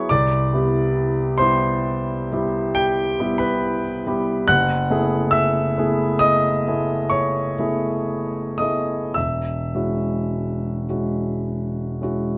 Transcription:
Already playing: F#3 B3 E4 G#4 B4 C#5 B5 C#6
0.09 C2 D5 D6
0.53 G3 B3 E4 G4
1.38 G3 B3 E4 G4 C5 C6
2.32 G3 B3 E4 G4
2.75 G4 G5
3.20 G3 B3 E4 G4
3.38 B4 B5
4.07 G3 B3 E4 G4
4.48 F#1 F#5 F#6
4.90 A3 B3 E4 G#4
5.31 E5 E6
5.78 A3 B3 E4 G#4
6.19 D#5 D#6
6.68 A3 B3 E4 G#4
7.10 C#5 C#6
7.59 A3 B3 E4 G#4
8.58 A3 B3 E4 G#4 D#5 D#6
9.14 E1 E5 E6
9.75 G#3 C#4 E4 F#4
10.89 G#3 C#4 E4 F#4
12.01 G#3 C#4 E4 F#4

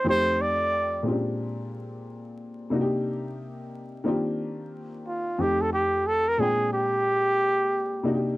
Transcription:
0.04 F2 A3 C4 D#4 G4
0.09 C5
0.41 D5
1.03 A#2 G#3 C4 C#4
1.07 F4 G4
1.12 D4
2.70 C3 A#3 D4 D#4
2.75 F#4
2.81 G4
4.04 D#3 A#3 C4 D4 F4
4.08 G4
5.07 F4
5.38 F2 A3 C4 D#4 G4
5.62 A4
5.73 G4
6.07 A4
6.28 A#4
6.38 A#2 G#3 C4 D4 F4 G#4
6.42 G5
6.73 G4
8.03 C3 A#3 D4 D#4
8.08 F#4
8.14 G4

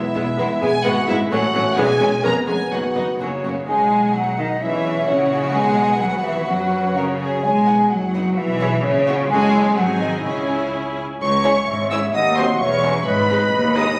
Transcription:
Already playing: G#3 B3 E4 E5
0.14 E1 E2 G#3 B3 E4
0.38 E1 E2 G#3 B3 E4
0.62 E1 E2 G#3 B3 E4 G#4 G#5
0.84 G#1 G#2 G#3 B3 E4 F#4 F#5
1.08 G#1 G#2 G#3 B3 E4 E5
1.31 A1 A2 F#3 A3 C#4 F#4 F#5
1.54 A1 A2 F#3 A3 C#4
1.77 E1 E2 E3 G#3 C#4 G#4 G#5
2.00 E1 E2 E3 G#3 C#4
2.23 F1 F2 G#3 B3 C#4 A#4 A#5
2.46 F1 F2 G#3 B3 C#4 G#4 G#5
2.71 F#1 F#2 D#3 B3 D#4 F#4 F#5
2.95 F#1 F#2 D#3 B3 D#4 F#4
3.20 F#1 F#2 C#3 F#3 A#3 C#4 F#4 C#5
3.44 F#1 F#2 F#3 A#3 C#4 F#4
3.68 B1 G#3 D#4 G#4 F#5 G#5
4.15 F#3 F#4 F#5
4.38 D#3 D#4 D#5
4.62 E3 C#4 E4 G#4 E5
5.08 A#1 C#3 C#4 F#4 C#5 F#5
5.53 B1 G#3 B3 D#4 G#4 G#5
6.00 D#2 F#3 F#4 B4 F#5
6.23 E3 E4 E5
6.47 F#2 F#3 C#4 F#4 F#5
6.96 C#3 C#4 A#4 C#5
7.19 G#4
7.42 B1 G#3 G#4 G#5
7.66 B3 D#4 B4 F#5
7.89 F#1 F#3 F#4 F#5
8.14 B3 D#4 B4 F#5
8.36 B1 E3 E4 E5
8.61 C#4 E4 G#4 C#5
8.82 A#1 C#3 C#4 C#5
9.08 C#4 E4 F#4 C#5
9.29 F#1 G#3 C#4 F#4 G#4 A4 C#5 G#5
9.54 E4
9.76 G#1 F#3 C4 D#4 F#4 G#4 F#5 G#5
9.99 D#3 D#4 D#5
10.23 C#2 C#3 C#4 E4 G#4 C#5 G#5
11.20 C#2 C#5 C#6
11.44 G#3 C#4 E4 G#4 C#5
11.67 G#1 G#2 E5
11.90 G#3 C#4 E4 G#4 C#5 E5 E6
12.14 D#2 D#5 F#5 D#6
12.36 F#3 C4 F#4 C5 C6
12.58 E1 E2 C#5 E5 C#6
12.83 G#3 C#4 E4 G#4
13.06 G#1 G#2 B4 D#5 B5
13.29 G#3 D#4 B4
13.53 D#2
13.76 G#3 D#4 B4 D#5 D#6

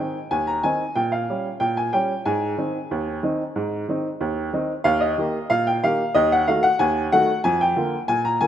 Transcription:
Already playing: G5
0.00 D#3 C4 D#4
0.31 D#2 G#5
0.47 A#5
0.63 D#3 C4 D#4 G#5
0.96 A#2 G5
1.12 F5
1.30 G3 C#4
1.60 A#2 G5
1.77 G#5
1.93 G3 C#4 G5
2.26 G#2 G#5
2.58 D#3 C4 D#4
2.91 D#2
3.23 D#3 C4 D#4
3.56 G#2
3.88 D#3 C4 D#4
4.21 D#2
4.53 D#3 C4 D#4
4.84 D#2 F5
5.00 D#5
5.18 D#3 A#3 G4
5.50 A#2 F5
5.67 G5
5.83 D#3 A#3 G4 F5
6.15 D#2 D#5
6.32 F#5
6.48 D#3 A3 F#4 F5
6.63 F#5
6.79 D#2 G#5
7.12 D#3 A3 F#4 F#5
7.44 F2 G#5
7.61 G5
7.76 D3 A#3 F4
8.08 A#2 G#5
8.25 A#5
8.41 D3 A#3 F4 G#5

